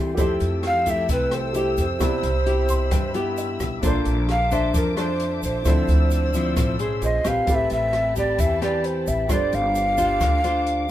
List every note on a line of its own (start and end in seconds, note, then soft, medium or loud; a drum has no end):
0.00 0.16 E2 medium
0.00 0.16 E3 medium
0.00 0.14 G3 medium
0.00 0.15 C4 medium
0.00 0.15 E4 medium
0.00 0.15 G4 medium
0.00 0.16 A4 medium
0.00 0.17 A4 soft
0.00 0.18 C5 soft
0.00 0.20 E5 medium
0.00 0.16 G5 medium
0.00 0.17 C6 medium
0.15 0.39 F2 medium
0.15 1.07 F3 medium
0.15 0.83 A3 soft
0.15 0.83 E4 medium
0.15 1.51 G4 medium
0.15 0.83 G4 medium
0.15 1.52 A4 medium
0.15 1.99 A4 medium
0.15 1.52 C5 medium
0.15 1.99 G5 medium
0.15 3.79 E6 medium
0.15 kick medium
0.15 closed hi-hat medium
0.15 shaker medium
0.20 1.53 E5 medium
0.40 1.06 F2 medium
0.40 closed hi-hat soft
0.40 shaker soft
0.63 0.91 F5 loud
0.63 cross-stick medium
0.63 closed hi-hat soft
0.86 1.51 A3 medium
0.86 1.52 E4 medium
0.86 1.52 G4 medium
0.86 1.11 E5 loud
0.86 kick soft
0.86 closed hi-hat soft
0.86 shaker medium
1.09 1.74 C2 medium
1.09 1.98 C3 medium
1.09 1.36 B4 medium
1.09 kick medium
1.09 closed hi-hat medium
1.09 shaker medium
1.31 1.79 C5 medium
1.31 cross-stick medium
1.31 closed hi-hat soft
1.31 shaker soft
1.53 1.84 A3 medium
1.53 1.85 E4 medium
1.53 1.98 G4 soft
1.53 1.85 G4 medium
1.53 2.00 A4 soft
1.53 2.01 C5 soft
1.53 2.01 E5 soft
1.53 closed hi-hat soft
1.53 shaker medium
1.77 1.99 F2 medium
1.77 3.12 C5 medium
1.77 kick soft
1.77 closed hi-hat soft
1.77 shaker medium
1.98 2.22 C2 medium
1.98 2.89 C3 medium
1.98 2.30 B3 medium
1.98 3.78 E4 medium
1.98 2.30 E4 medium
1.98 3.79 G4 soft
1.98 2.30 G4 soft
1.98 7.44 E5 medium
1.98 3.81 B5 medium
1.98 3.80 B5 soft
1.98 kick medium
1.98 cross-stick medium
1.98 closed hi-hat medium
1.98 shaker medium
2.04 3.81 D5 medium
2.23 2.88 C2 loud
2.23 closed hi-hat soft
2.23 shaker soft
2.46 2.92 E4 medium
2.46 2.92 G4 medium
2.46 closed hi-hat soft
2.69 2.91 C6 medium
2.69 kick soft
2.69 closed hi-hat soft
2.69 shaker medium
2.91 3.81 G2 medium
2.91 3.56 G2 medium
2.91 3.34 G5 medium
2.91 kick medium
2.91 cross-stick medium
2.91 closed hi-hat medium
2.91 shaker medium
3.14 3.79 B3 medium
3.14 3.79 E4 medium
3.14 3.80 G4 medium
3.14 closed hi-hat soft
3.14 shaker soft
3.37 3.80 E5 medium
3.37 closed hi-hat soft
3.37 shaker medium
3.60 3.81 B1 medium
3.60 kick soft
3.60 cross-stick medium
3.60 closed hi-hat soft
3.60 shaker medium
3.81 4.04 A#1 medium
3.81 4.72 A#3 medium
3.81 5.61 D4 medium
3.81 4.28 D4 medium
3.81 5.62 F4 medium
3.81 4.28 A4 medium
3.81 5.63 A4 medium
3.81 4.28 C5 medium
3.81 5.63 A5 medium
3.81 5.63 D6 medium
3.81 kick medium
3.81 closed hi-hat medium
3.81 shaker medium
3.87 5.64 C5 medium
4.05 4.70 A#1 loud
4.05 closed hi-hat soft
4.05 shaker soft
4.29 4.55 F5 loud
4.29 cross-stick medium
4.29 closed hi-hat soft
4.51 4.93 D4 medium
4.51 4.94 A4 medium
4.51 4.94 C5 medium
4.51 4.75 E5 loud
4.51 kick soft
4.51 closed hi-hat soft
4.51 shaker medium
4.74 5.39 F2 medium
4.74 5.63 F3 medium
4.74 4.97 A#4 medium
4.74 kick medium
4.74 closed hi-hat medium
4.74 shaker medium
4.97 5.62 D4 medium
4.97 5.62 A4 medium
4.97 5.62 C5 medium
4.97 5.41 C5 medium
4.97 cross-stick medium
4.97 closed hi-hat soft
4.97 shaker soft
5.20 closed hi-hat soft
5.43 5.64 A#1 medium
5.43 6.76 C5 medium
5.43 kick soft
5.43 closed hi-hat soft
5.43 shaker medium
5.62 5.87 D2 medium
5.62 6.54 D3 medium
5.62 6.30 F3 medium
5.62 6.30 C4 soft
5.62 6.98 E4 soft
5.62 7.01 D5 medium
5.62 7.01 E6 medium
5.62 kick medium
5.62 cross-stick medium
5.62 closed hi-hat medium
5.62 shaker medium
5.66 6.31 E4 medium
5.66 7.00 A4 soft
5.66 7.01 C5 medium
5.88 6.53 D2 medium
5.88 closed hi-hat soft
5.88 shaker soft
6.11 closed hi-hat soft
6.11 shaker medium
6.34 6.76 F3 medium
6.34 6.76 C4 medium
6.34 6.76 E4 medium
6.34 kick soft
6.34 closed hi-hat soft
6.34 shaker medium
6.56 6.99 B1 medium
6.56 7.00 A2 medium
6.56 kick medium
6.56 cross-stick medium
6.56 closed hi-hat medium
6.56 shaker medium
6.79 7.21 C#4 medium
6.79 7.21 G#4 medium
6.79 7.22 C5 medium
6.79 closed hi-hat soft
6.79 shaker soft
7.02 7.23 A#1 medium
7.02 7.47 F4 soft
7.02 7.49 C5 medium
7.02 7.29 D#5 medium
7.02 7.47 G#5 medium
7.02 7.47 C6 medium
7.02 closed hi-hat soft
7.02 shaker medium
7.24 7.46 A#1 medium
7.24 8.12 C4 medium
7.24 8.12 G4 medium
7.24 8.13 B4 medium
7.24 7.50 F5 medium
7.24 kick soft
7.24 cross-stick medium
7.24 closed hi-hat soft
7.24 shaker medium
7.45 7.69 A1 medium
7.45 8.36 A3 soft
7.45 9.25 C4 soft
7.45 9.26 E4 soft
7.45 9.27 G4 soft
7.45 9.28 G5 medium
7.45 9.28 A5 medium
7.45 9.29 B5 medium
7.45 kick medium
7.45 closed hi-hat medium
7.45 shaker medium
7.50 9.28 B4 medium
7.50 7.56 F5 loud
7.55 7.72 E5 loud
7.70 8.35 A1 medium
7.70 8.14 E5 loud
7.70 closed hi-hat soft
7.70 shaker soft
7.93 cross-stick medium
7.93 closed hi-hat soft
8.16 8.58 C4 medium
8.16 8.58 G4 medium
8.16 8.58 B4 medium
8.16 8.41 D5 medium
8.16 kick soft
8.16 closed hi-hat soft
8.16 shaker medium
8.39 9.03 E2 medium
8.39 9.28 E3 medium
8.39 8.62 E5 medium
8.39 kick medium
8.39 closed hi-hat medium
8.39 shaker medium
8.62 9.26 C4 medium
8.62 9.26 G4 medium
8.62 9.27 B4 medium
8.62 8.87 D5 medium
8.62 cross-stick medium
8.62 closed hi-hat soft
8.62 shaker soft
8.84 9.09 C5 medium
8.84 closed hi-hat soft
9.07 9.28 A1 medium
9.07 9.33 E5 medium
9.07 kick soft
9.07 closed hi-hat soft
9.07 shaker medium
9.27 9.51 G1 medium
9.27 10.18 G3 medium
9.27 10.91 D4 soft
9.27 9.94 D4 medium
9.27 10.91 F4 soft
9.27 9.94 F4 medium
9.27 10.91 G4 medium
9.27 9.94 C5 medium
9.27 9.56 D5 loud
9.27 10.91 F5 medium
9.27 10.91 D6 medium
9.27 kick medium
9.27 cross-stick medium
9.27 closed hi-hat medium
9.27 shaker medium
9.31 10.91 A4 soft
9.31 10.91 C5 medium
9.52 10.17 G1 loud
9.52 10.90 F5 loud
9.52 closed hi-hat soft
9.52 shaker soft
9.75 closed hi-hat soft
9.75 shaker medium
9.97 10.40 D4 medium
9.97 10.40 F4 medium
9.97 10.40 C5 medium
9.97 kick soft
9.97 closed hi-hat soft
9.97 shaker medium
10.20 10.85 D2 medium
10.20 10.91 D3 medium
10.20 kick medium
10.20 cross-stick medium
10.20 closed hi-hat medium
10.20 shaker medium
10.43 10.86 D4 medium
10.43 10.86 F4 medium
10.43 10.86 C5 medium
10.43 closed hi-hat soft
10.43 shaker soft
10.67 closed hi-hat soft